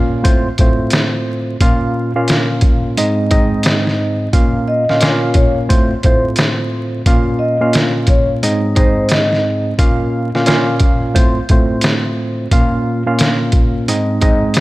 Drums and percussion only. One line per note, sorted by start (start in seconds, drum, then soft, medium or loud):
0.25 kick loud
0.25 closed hi-hat loud
0.58 kick medium
0.58 closed hi-hat medium
0.90 snare loud
0.90 closed hi-hat medium
1.61 kick loud
1.61 closed hi-hat medium
2.28 snare loud
2.28 closed hi-hat medium
2.61 kick medium
2.61 closed hi-hat medium
2.97 closed hi-hat loud
3.31 kick medium
3.31 closed hi-hat medium
3.63 snare loud
3.63 closed hi-hat medium
3.87 snare soft
4.33 kick loud
4.33 closed hi-hat medium
4.89 snare soft
5.01 snare loud
5.01 closed hi-hat medium
5.34 kick medium
5.34 closed hi-hat medium
5.70 kick loud
5.70 closed hi-hat loud
6.03 kick medium
6.03 closed hi-hat medium
6.36 snare loud
6.36 closed hi-hat medium
7.06 kick loud
7.06 closed hi-hat medium
7.73 snare loud
7.73 closed hi-hat medium
8.07 kick medium
8.07 closed hi-hat medium
8.43 closed hi-hat loud
8.76 kick medium
8.76 closed hi-hat medium
9.09 snare loud
9.09 closed hi-hat medium
9.33 snare soft
9.79 kick loud
9.79 closed hi-hat medium
10.35 snare soft
10.46 snare loud
10.46 closed hi-hat medium
10.80 kick medium
10.80 closed hi-hat medium
11.16 kick loud
11.16 closed hi-hat loud
11.49 kick medium
11.49 closed hi-hat medium
11.81 snare loud
11.81 closed hi-hat medium
12.51 kick loud
12.51 closed hi-hat medium
13.19 snare loud
13.19 closed hi-hat medium
13.52 kick loud
13.52 closed hi-hat medium
13.88 closed hi-hat loud
14.21 kick medium
14.21 closed hi-hat medium
14.54 snare loud
14.54 closed hi-hat medium